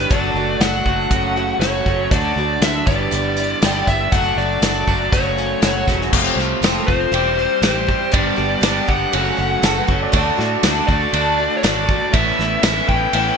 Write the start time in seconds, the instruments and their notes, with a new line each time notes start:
Already playing: twelve-string acoustic guitar G3 B3 G4, clean electric guitar B3 G4, lead electric guitar B4
0.09 fingered electric bass F#1, twelve-string acoustic guitar F#3 A3 D4 F#4, tonewheel organ A3 D4 F#4 A4, lead electric guitar D5, kick, closed hi-hat
0.34 fingered electric bass F#1, twelve-string acoustic guitar A3 D4 F#4
0.60 fingered electric bass F#1, twelve-string acoustic guitar F#3 A3 D4 F#4, lead electric guitar F#5, snare, closed hi-hat
0.85 fingered electric bass F#1, clean electric guitar F#3, twelve-string acoustic guitar A3 D4 F#4, kick
1.08 fingered electric bass F#1, clean electric guitar F#2 C#3, twelve-string acoustic guitar F#3, tonewheel organ A3 C#4 F#4 A4, kick, closed hi-hat
1.12 twelve-string acoustic guitar A3 C#4 F#4
1.36 twelve-string acoustic guitar F#3 A3 C#4 F#4
1.59 fingered electric bass F#1, twelve-string acoustic guitar F#2 C#3 F#3 A3 C#4 F#4, lead electric guitar C#5, snare, closed hi-hat
1.86 fingered electric bass F#1, clean electric guitar F#2 C#3, twelve-string acoustic guitar F#3 A3 C#4 F#4, kick
2.11 fingered electric bass D2, twelve-string acoustic guitar D3 F#3 A3 D4 F#4, tonewheel organ A3 D4 F#4 A4, lead electric guitar D5, kick, closed hi-hat
2.36 fingered electric bass D2, twelve-string acoustic guitar D4 F#4, tambourine
2.40 twelve-string acoustic guitar A3
2.61 fingered electric bass D2, twelve-string acoustic guitar D3 F#3 A3 D4 F#4, lead electric guitar E5, snare, closed hi-hat, tambourine
2.85 fingered electric bass G1, clean electric guitar G2 D3 E3, tonewheel organ B3 D4 E4 G4, lead electric guitar D5, kick, tambourine
2.89 twelve-string acoustic guitar E3 G3 B3 G4, clean electric guitar E4
3.11 fingered electric bass G1, twelve-string acoustic guitar E3 G3 B3, closed hi-hat, tambourine
3.16 twelve-string acoustic guitar G4
3.37 twelve-string acoustic guitar E3 G3 B3 G4, tambourine
3.62 fingered electric bass G1, twelve-string acoustic guitar G2 D3 E3 G3 B3 G4, clean electric guitar E4, snare, closed hi-hat, tambourine
3.87 fingered electric bass G1, twelve-string acoustic guitar E3 G3 B3 G4, lead electric guitar E5, kick, tambourine
4.12 fingered electric bass F#1, twelve-string acoustic guitar F#3 A3 D4 F#4, tonewheel organ A3 D4 F#4 A4, lead electric guitar F#5, kick, closed hi-hat, tambourine
4.36 fingered electric bass F#1, twelve-string acoustic guitar A3 D4 F#4, lead electric guitar D5, tambourine
4.62 fingered electric bass F#1, twelve-string acoustic guitar F#3 A3 D4 F#4, lead electric guitar D5, snare, closed hi-hat, tambourine
4.87 fingered electric bass F#1, clean electric guitar F#3, twelve-string acoustic guitar A3 D4 F#4, kick, tambourine
5.11 fingered electric bass F#1, clean electric guitar F#2 C#3, twelve-string acoustic guitar F#3 A3, tonewheel organ A3 C#4 F#4 A4, lead electric guitar C#5, kick, closed hi-hat, tambourine
5.16 twelve-string acoustic guitar C#4 F#4
5.37 twelve-string acoustic guitar F#3 A3 C#4 F#4, tambourine
5.62 fingered electric bass F#1, twelve-string acoustic guitar F#2 C#3 F#3 A3 C#4 F#4, snare, closed hi-hat, tambourine
5.83 tonewheel organ B3 C4
5.87 fingered electric bass E1, clean electric guitar F#2 C#3, twelve-string acoustic guitar F#3 A3 C#4 F#4, tonewheel organ D4, kick, snare, tambourine
5.92 tonewheel organ E4 F4
5.98 tonewheel organ G4 A4, snare
6.04 tonewheel organ B4 C5
6.09 fingered electric bass F1, twelve-string acoustic guitar F2, tonewheel organ D5 E5, kick, crash
6.14 twelve-string acoustic guitar C3 F3 A3 C4 F4, tonewheel organ A3 C4 F4 A4
6.36 fingered electric bass C2, twelve-string acoustic guitar F3 A3 C4 F4, snare
6.61 fingered electric bass F1, twelve-string acoustic guitar F3 A3 C4 F4, snare, ride bell, tambourine
6.87 fingered electric bass F1, twelve-string acoustic guitar F3 A3 C4 F4, lead electric guitar C5, kick
7.12 fingered electric bass E1, twelve-string acoustic guitar E3 G3 C4 G4, tonewheel organ G3 C4 E4 G4, ride bell
7.39 twelve-string acoustic guitar G3 C4 G4
7.62 fingered electric bass A1, twelve-string acoustic guitar E3 G3 C4 G4, lead electric guitar C5, snare, ride bell, tambourine
7.87 twelve-string acoustic guitar G3 C4 G4, kick
8.11 fingered electric bass G1, twelve-string acoustic guitar G2 D3 G3 B3 D4 G4, tonewheel organ G3 B3 D4 G4, lead electric guitar D5, kick, ride bell
8.36 fingered electric bass G1, twelve-string acoustic guitar G3 B3 D4 G4
8.61 fingered electric bass G1, twelve-string acoustic guitar G3 B3 D4 G4, lead electric guitar D5, snare, ride bell, tambourine
8.87 fingered electric bass G1, twelve-string acoustic guitar G3 B3 D4 G4, lead electric guitar F#5, kick
9.11 fingered electric bass F#1, twelve-string acoustic guitar F#2 C#3 F#3 A3 C#4 F#4, tonewheel organ A3 C#4 F#4 A4, ride bell
9.36 fingered electric bass F#1, twelve-string acoustic guitar F#3 A3 C#4 F#4
9.61 fingered electric bass F#1, twelve-string acoustic guitar F#3 A3 C#4, upright piano G#4, snare, ride bell, tambourine
9.65 twelve-string acoustic guitar F#4, upright piano A4
9.78 upright piano B4
9.87 fingered electric bass F#1, twelve-string acoustic guitar F#3 A3 C#4 F#4, upright piano C#5, kick
10.02 upright piano D5
10.11 fingered electric bass D2, twelve-string acoustic guitar D3 A3 D4 F#4, tonewheel organ A3 D4 F#4 A4, upright piano C#5, kick, ride bell
10.17 upright piano D5
10.37 fingered electric bass A2, twelve-string acoustic guitar A3 D4 F#4, snare
10.63 fingered electric bass D2, twelve-string acoustic guitar D3 A3 D4 F#4, snare, ride bell, tambourine
10.88 fingered electric bass D2, twelve-string acoustic guitar A3 D4 F#4, lead electric guitar D5, kick
11.13 fingered electric bass D2, twelve-string acoustic guitar D3 A3 D4 F#4, ride bell
11.38 twelve-string acoustic guitar A3 D4 F#4
11.57 lead electric guitar C#5
11.63 fingered electric bass G#1, twelve-string acoustic guitar D3 A3 D4 F#4, lead electric guitar D5, snare, ride bell, tambourine
11.89 twelve-string acoustic guitar A3 D4 F#4, kick
12.11 fingered electric bass A1, twelve-string acoustic guitar A2 E3 B3 C#4 E4, tonewheel organ C#4 E4 A4 B4, lead electric guitar E5, kick, ride bell
12.39 fingered electric bass A1, twelve-string acoustic guitar B3 C#4 E4, snare
12.63 fingered electric bass A1, twelve-string acoustic guitar E3 B3 C#4 E4, lead electric guitar E5, snare, ride bell, tambourine
12.89 fingered electric bass A1, twelve-string acoustic guitar B3 C#4 E4, lead electric guitar G5, kick
13.13 fingered electric bass A1, twelve-string acoustic guitar A2 E3 B3 C#4 E4, ride bell